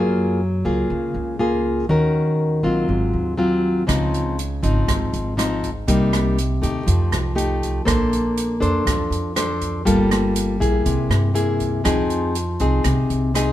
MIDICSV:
0, 0, Header, 1, 4, 480
1, 0, Start_track
1, 0, Key_signature, -4, "minor"
1, 0, Tempo, 497925
1, 1819, Time_signature, 4, 2, 24, 8
1, 13037, End_track
2, 0, Start_track
2, 0, Title_t, "Nylon-string guitar"
2, 0, Program_c, 0, 24
2, 0, Note_on_c, 0, 54, 53
2, 0, Note_on_c, 0, 58, 57
2, 0, Note_on_c, 0, 65, 61
2, 0, Note_on_c, 0, 68, 65
2, 384, Note_off_c, 0, 65, 0
2, 385, Note_off_c, 0, 58, 0
2, 387, Note_off_c, 0, 68, 0
2, 625, Note_on_c, 0, 58, 55
2, 629, Note_on_c, 0, 65, 57
2, 633, Note_on_c, 0, 68, 50
2, 840, Note_off_c, 0, 54, 0
2, 876, Note_on_c, 0, 49, 48
2, 1303, Note_off_c, 0, 65, 0
2, 1304, Note_off_c, 0, 58, 0
2, 1307, Note_off_c, 0, 68, 0
2, 1344, Note_on_c, 0, 58, 42
2, 1344, Note_on_c, 0, 65, 53
2, 1353, Note_on_c, 0, 68, 59
2, 1782, Note_off_c, 0, 65, 0
2, 1783, Note_off_c, 0, 58, 0
2, 1787, Note_off_c, 0, 68, 0
2, 1802, Note_off_c, 0, 49, 0
2, 1824, Note_on_c, 0, 51, 59
2, 1827, Note_on_c, 0, 61, 49
2, 1831, Note_on_c, 0, 66, 49
2, 1837, Note_on_c, 0, 70, 56
2, 2502, Note_off_c, 0, 61, 0
2, 2505, Note_off_c, 0, 66, 0
2, 2508, Note_off_c, 0, 70, 0
2, 2539, Note_on_c, 0, 54, 53
2, 2543, Note_on_c, 0, 60, 44
2, 2548, Note_on_c, 0, 65, 57
2, 2755, Note_off_c, 0, 51, 0
2, 2783, Note_on_c, 0, 44, 47
2, 3219, Note_off_c, 0, 54, 0
2, 3221, Note_off_c, 0, 60, 0
2, 3222, Note_off_c, 0, 65, 0
2, 3254, Note_on_c, 0, 54, 57
2, 3261, Note_on_c, 0, 60, 47
2, 3263, Note_on_c, 0, 65, 53
2, 3697, Note_off_c, 0, 54, 0
2, 3699, Note_off_c, 0, 60, 0
2, 3701, Note_off_c, 0, 65, 0
2, 3714, Note_off_c, 0, 44, 0
2, 3728, Note_on_c, 0, 49, 54
2, 3732, Note_on_c, 0, 53, 59
2, 3736, Note_on_c, 0, 60, 59
2, 3742, Note_on_c, 0, 63, 57
2, 4210, Note_off_c, 0, 53, 0
2, 4213, Note_off_c, 0, 60, 0
2, 4216, Note_off_c, 0, 63, 0
2, 4460, Note_on_c, 0, 53, 57
2, 4464, Note_on_c, 0, 60, 54
2, 4471, Note_on_c, 0, 63, 61
2, 4668, Note_off_c, 0, 49, 0
2, 4699, Note_on_c, 0, 44, 53
2, 5139, Note_off_c, 0, 53, 0
2, 5141, Note_off_c, 0, 60, 0
2, 5145, Note_off_c, 0, 63, 0
2, 5178, Note_on_c, 0, 53, 51
2, 5186, Note_on_c, 0, 60, 49
2, 5187, Note_on_c, 0, 63, 56
2, 5486, Note_off_c, 0, 53, 0
2, 5489, Note_off_c, 0, 63, 0
2, 5490, Note_off_c, 0, 60, 0
2, 5633, Note_off_c, 0, 44, 0
2, 5664, Note_on_c, 0, 48, 50
2, 5668, Note_on_c, 0, 58, 55
2, 5670, Note_on_c, 0, 55, 58
2, 5673, Note_on_c, 0, 63, 59
2, 6139, Note_off_c, 0, 55, 0
2, 6140, Note_off_c, 0, 58, 0
2, 6140, Note_off_c, 0, 63, 0
2, 6379, Note_on_c, 0, 57, 48
2, 6387, Note_on_c, 0, 63, 48
2, 6391, Note_on_c, 0, 67, 55
2, 6598, Note_off_c, 0, 48, 0
2, 6618, Note_on_c, 0, 53, 56
2, 7060, Note_off_c, 0, 57, 0
2, 7065, Note_off_c, 0, 63, 0
2, 7065, Note_off_c, 0, 67, 0
2, 7089, Note_on_c, 0, 57, 48
2, 7092, Note_on_c, 0, 63, 49
2, 7095, Note_on_c, 0, 67, 52
2, 7536, Note_off_c, 0, 57, 0
2, 7536, Note_off_c, 0, 63, 0
2, 7538, Note_off_c, 0, 67, 0
2, 7554, Note_off_c, 0, 53, 0
2, 7571, Note_on_c, 0, 69, 54
2, 7575, Note_on_c, 0, 58, 56
2, 7581, Note_on_c, 0, 62, 51
2, 7582, Note_on_c, 0, 72, 60
2, 8257, Note_off_c, 0, 69, 0
2, 8260, Note_off_c, 0, 62, 0
2, 8262, Note_off_c, 0, 72, 0
2, 8294, Note_on_c, 0, 62, 59
2, 8301, Note_on_c, 0, 69, 55
2, 8308, Note_on_c, 0, 72, 50
2, 8514, Note_off_c, 0, 58, 0
2, 8534, Note_on_c, 0, 53, 48
2, 8981, Note_off_c, 0, 62, 0
2, 8981, Note_off_c, 0, 69, 0
2, 8982, Note_off_c, 0, 72, 0
2, 9026, Note_on_c, 0, 62, 58
2, 9028, Note_on_c, 0, 69, 50
2, 9032, Note_on_c, 0, 72, 55
2, 9466, Note_off_c, 0, 62, 0
2, 9466, Note_off_c, 0, 69, 0
2, 9466, Note_off_c, 0, 72, 0
2, 9474, Note_off_c, 0, 53, 0
2, 9498, Note_on_c, 0, 55, 54
2, 9502, Note_on_c, 0, 58, 55
2, 9506, Note_on_c, 0, 65, 49
2, 9509, Note_on_c, 0, 69, 54
2, 10183, Note_off_c, 0, 58, 0
2, 10183, Note_off_c, 0, 65, 0
2, 10187, Note_off_c, 0, 69, 0
2, 10220, Note_on_c, 0, 58, 46
2, 10221, Note_on_c, 0, 64, 46
2, 10229, Note_on_c, 0, 68, 51
2, 10439, Note_off_c, 0, 55, 0
2, 10464, Note_on_c, 0, 48, 51
2, 10903, Note_off_c, 0, 58, 0
2, 10903, Note_off_c, 0, 64, 0
2, 10908, Note_off_c, 0, 68, 0
2, 10932, Note_on_c, 0, 58, 55
2, 10939, Note_on_c, 0, 64, 51
2, 10944, Note_on_c, 0, 68, 57
2, 11380, Note_off_c, 0, 58, 0
2, 11381, Note_off_c, 0, 64, 0
2, 11385, Note_off_c, 0, 68, 0
2, 11400, Note_off_c, 0, 48, 0
2, 11414, Note_on_c, 0, 53, 58
2, 11419, Note_on_c, 0, 60, 61
2, 11424, Note_on_c, 0, 63, 56
2, 11429, Note_on_c, 0, 68, 57
2, 11898, Note_off_c, 0, 60, 0
2, 11901, Note_off_c, 0, 63, 0
2, 11903, Note_off_c, 0, 68, 0
2, 12148, Note_on_c, 0, 60, 52
2, 12156, Note_on_c, 0, 63, 48
2, 12158, Note_on_c, 0, 68, 54
2, 12355, Note_off_c, 0, 53, 0
2, 12391, Note_on_c, 0, 48, 52
2, 12828, Note_off_c, 0, 60, 0
2, 12832, Note_off_c, 0, 63, 0
2, 12832, Note_off_c, 0, 68, 0
2, 12864, Note_on_c, 0, 60, 58
2, 12874, Note_on_c, 0, 63, 49
2, 12878, Note_on_c, 0, 68, 58
2, 13037, Note_off_c, 0, 48, 0
2, 13037, Note_off_c, 0, 60, 0
2, 13037, Note_off_c, 0, 63, 0
2, 13037, Note_off_c, 0, 68, 0
2, 13037, End_track
3, 0, Start_track
3, 0, Title_t, "Upright bass"
3, 0, Program_c, 1, 32
3, 0, Note_on_c, 1, 42, 87
3, 588, Note_off_c, 1, 42, 0
3, 631, Note_on_c, 1, 37, 87
3, 850, Note_off_c, 1, 37, 0
3, 867, Note_on_c, 1, 37, 83
3, 1088, Note_off_c, 1, 37, 0
3, 1103, Note_on_c, 1, 37, 79
3, 1781, Note_off_c, 1, 37, 0
3, 1824, Note_on_c, 1, 39, 96
3, 2501, Note_off_c, 1, 39, 0
3, 2536, Note_on_c, 1, 34, 84
3, 2760, Note_off_c, 1, 34, 0
3, 2782, Note_on_c, 1, 32, 82
3, 3003, Note_off_c, 1, 32, 0
3, 3022, Note_on_c, 1, 39, 78
3, 3700, Note_off_c, 1, 39, 0
3, 3749, Note_on_c, 1, 37, 96
3, 4424, Note_off_c, 1, 37, 0
3, 4464, Note_on_c, 1, 32, 81
3, 4683, Note_off_c, 1, 32, 0
3, 4707, Note_on_c, 1, 32, 81
3, 4925, Note_off_c, 1, 32, 0
3, 4949, Note_on_c, 1, 32, 81
3, 5624, Note_off_c, 1, 32, 0
3, 5671, Note_on_c, 1, 36, 91
3, 6345, Note_off_c, 1, 36, 0
3, 6389, Note_on_c, 1, 39, 81
3, 6606, Note_off_c, 1, 39, 0
3, 6628, Note_on_c, 1, 41, 88
3, 6846, Note_off_c, 1, 41, 0
3, 6858, Note_on_c, 1, 36, 77
3, 7540, Note_off_c, 1, 36, 0
3, 7592, Note_on_c, 1, 34, 90
3, 8267, Note_off_c, 1, 34, 0
3, 8309, Note_on_c, 1, 41, 84
3, 8528, Note_off_c, 1, 41, 0
3, 8548, Note_on_c, 1, 41, 76
3, 8767, Note_off_c, 1, 41, 0
3, 8775, Note_on_c, 1, 41, 76
3, 9460, Note_off_c, 1, 41, 0
3, 9507, Note_on_c, 1, 31, 80
3, 10186, Note_off_c, 1, 31, 0
3, 10234, Note_on_c, 1, 34, 83
3, 10452, Note_off_c, 1, 34, 0
3, 10470, Note_on_c, 1, 36, 83
3, 10690, Note_off_c, 1, 36, 0
3, 10694, Note_on_c, 1, 43, 78
3, 11380, Note_off_c, 1, 43, 0
3, 11431, Note_on_c, 1, 41, 89
3, 12109, Note_off_c, 1, 41, 0
3, 12152, Note_on_c, 1, 36, 90
3, 12372, Note_off_c, 1, 36, 0
3, 12385, Note_on_c, 1, 36, 81
3, 12608, Note_off_c, 1, 36, 0
3, 12629, Note_on_c, 1, 36, 77
3, 13037, Note_off_c, 1, 36, 0
3, 13037, End_track
4, 0, Start_track
4, 0, Title_t, "Drums"
4, 3748, Note_on_c, 9, 36, 62
4, 3748, Note_on_c, 9, 37, 65
4, 3748, Note_on_c, 9, 42, 43
4, 3844, Note_off_c, 9, 36, 0
4, 3844, Note_off_c, 9, 37, 0
4, 3844, Note_off_c, 9, 42, 0
4, 3993, Note_on_c, 9, 42, 23
4, 4089, Note_off_c, 9, 42, 0
4, 4232, Note_on_c, 9, 42, 42
4, 4328, Note_off_c, 9, 42, 0
4, 4467, Note_on_c, 9, 36, 22
4, 4467, Note_on_c, 9, 42, 27
4, 4564, Note_off_c, 9, 36, 0
4, 4564, Note_off_c, 9, 42, 0
4, 4708, Note_on_c, 9, 36, 53
4, 4709, Note_on_c, 9, 37, 57
4, 4709, Note_on_c, 9, 42, 38
4, 4805, Note_off_c, 9, 36, 0
4, 4806, Note_off_c, 9, 37, 0
4, 4806, Note_off_c, 9, 42, 0
4, 4950, Note_on_c, 9, 42, 23
4, 5046, Note_off_c, 9, 42, 0
4, 5194, Note_on_c, 9, 37, 55
4, 5194, Note_on_c, 9, 42, 40
4, 5291, Note_off_c, 9, 37, 0
4, 5291, Note_off_c, 9, 42, 0
4, 5430, Note_on_c, 9, 36, 24
4, 5434, Note_on_c, 9, 42, 26
4, 5526, Note_off_c, 9, 36, 0
4, 5530, Note_off_c, 9, 42, 0
4, 5669, Note_on_c, 9, 36, 60
4, 5670, Note_on_c, 9, 42, 44
4, 5766, Note_off_c, 9, 36, 0
4, 5766, Note_off_c, 9, 42, 0
4, 5911, Note_on_c, 9, 37, 57
4, 5911, Note_on_c, 9, 42, 27
4, 6008, Note_off_c, 9, 37, 0
4, 6008, Note_off_c, 9, 42, 0
4, 6154, Note_on_c, 9, 42, 38
4, 6251, Note_off_c, 9, 42, 0
4, 6388, Note_on_c, 9, 36, 20
4, 6394, Note_on_c, 9, 42, 27
4, 6485, Note_off_c, 9, 36, 0
4, 6490, Note_off_c, 9, 42, 0
4, 6628, Note_on_c, 9, 36, 51
4, 6629, Note_on_c, 9, 42, 37
4, 6725, Note_off_c, 9, 36, 0
4, 6725, Note_off_c, 9, 42, 0
4, 6867, Note_on_c, 9, 37, 53
4, 6867, Note_on_c, 9, 42, 25
4, 6964, Note_off_c, 9, 37, 0
4, 6964, Note_off_c, 9, 42, 0
4, 7114, Note_on_c, 9, 42, 32
4, 7210, Note_off_c, 9, 42, 0
4, 7351, Note_on_c, 9, 36, 23
4, 7356, Note_on_c, 9, 42, 27
4, 7447, Note_off_c, 9, 36, 0
4, 7453, Note_off_c, 9, 42, 0
4, 7591, Note_on_c, 9, 36, 60
4, 7593, Note_on_c, 9, 37, 66
4, 7593, Note_on_c, 9, 42, 40
4, 7687, Note_off_c, 9, 36, 0
4, 7690, Note_off_c, 9, 37, 0
4, 7690, Note_off_c, 9, 42, 0
4, 7836, Note_on_c, 9, 42, 25
4, 7933, Note_off_c, 9, 42, 0
4, 8073, Note_on_c, 9, 42, 37
4, 8169, Note_off_c, 9, 42, 0
4, 8309, Note_on_c, 9, 36, 22
4, 8313, Note_on_c, 9, 42, 26
4, 8406, Note_off_c, 9, 36, 0
4, 8410, Note_off_c, 9, 42, 0
4, 8549, Note_on_c, 9, 36, 53
4, 8551, Note_on_c, 9, 37, 59
4, 8551, Note_on_c, 9, 42, 36
4, 8646, Note_off_c, 9, 36, 0
4, 8647, Note_off_c, 9, 37, 0
4, 8647, Note_off_c, 9, 42, 0
4, 8794, Note_on_c, 9, 42, 24
4, 8890, Note_off_c, 9, 42, 0
4, 9026, Note_on_c, 9, 37, 57
4, 9026, Note_on_c, 9, 42, 42
4, 9123, Note_off_c, 9, 37, 0
4, 9123, Note_off_c, 9, 42, 0
4, 9268, Note_on_c, 9, 42, 27
4, 9269, Note_on_c, 9, 36, 21
4, 9365, Note_off_c, 9, 36, 0
4, 9365, Note_off_c, 9, 42, 0
4, 9510, Note_on_c, 9, 36, 57
4, 9513, Note_on_c, 9, 42, 43
4, 9606, Note_off_c, 9, 36, 0
4, 9609, Note_off_c, 9, 42, 0
4, 9750, Note_on_c, 9, 37, 57
4, 9750, Note_on_c, 9, 42, 29
4, 9846, Note_off_c, 9, 37, 0
4, 9846, Note_off_c, 9, 42, 0
4, 9985, Note_on_c, 9, 42, 41
4, 10082, Note_off_c, 9, 42, 0
4, 10231, Note_on_c, 9, 36, 21
4, 10236, Note_on_c, 9, 42, 27
4, 10327, Note_off_c, 9, 36, 0
4, 10332, Note_off_c, 9, 42, 0
4, 10467, Note_on_c, 9, 42, 36
4, 10469, Note_on_c, 9, 36, 50
4, 10563, Note_off_c, 9, 42, 0
4, 10565, Note_off_c, 9, 36, 0
4, 10708, Note_on_c, 9, 37, 55
4, 10708, Note_on_c, 9, 42, 23
4, 10804, Note_off_c, 9, 37, 0
4, 10804, Note_off_c, 9, 42, 0
4, 10945, Note_on_c, 9, 42, 37
4, 11041, Note_off_c, 9, 42, 0
4, 11182, Note_on_c, 9, 42, 23
4, 11187, Note_on_c, 9, 36, 25
4, 11279, Note_off_c, 9, 42, 0
4, 11283, Note_off_c, 9, 36, 0
4, 11425, Note_on_c, 9, 37, 59
4, 11425, Note_on_c, 9, 42, 45
4, 11429, Note_on_c, 9, 36, 64
4, 11521, Note_off_c, 9, 37, 0
4, 11521, Note_off_c, 9, 42, 0
4, 11525, Note_off_c, 9, 36, 0
4, 11666, Note_on_c, 9, 42, 25
4, 11762, Note_off_c, 9, 42, 0
4, 11908, Note_on_c, 9, 42, 38
4, 12004, Note_off_c, 9, 42, 0
4, 12142, Note_on_c, 9, 42, 25
4, 12149, Note_on_c, 9, 36, 21
4, 12239, Note_off_c, 9, 42, 0
4, 12245, Note_off_c, 9, 36, 0
4, 12382, Note_on_c, 9, 37, 53
4, 12382, Note_on_c, 9, 42, 36
4, 12389, Note_on_c, 9, 36, 53
4, 12478, Note_off_c, 9, 37, 0
4, 12478, Note_off_c, 9, 42, 0
4, 12485, Note_off_c, 9, 36, 0
4, 12629, Note_on_c, 9, 42, 24
4, 12726, Note_off_c, 9, 42, 0
4, 12872, Note_on_c, 9, 37, 53
4, 12872, Note_on_c, 9, 42, 38
4, 12969, Note_off_c, 9, 37, 0
4, 12969, Note_off_c, 9, 42, 0
4, 13037, End_track
0, 0, End_of_file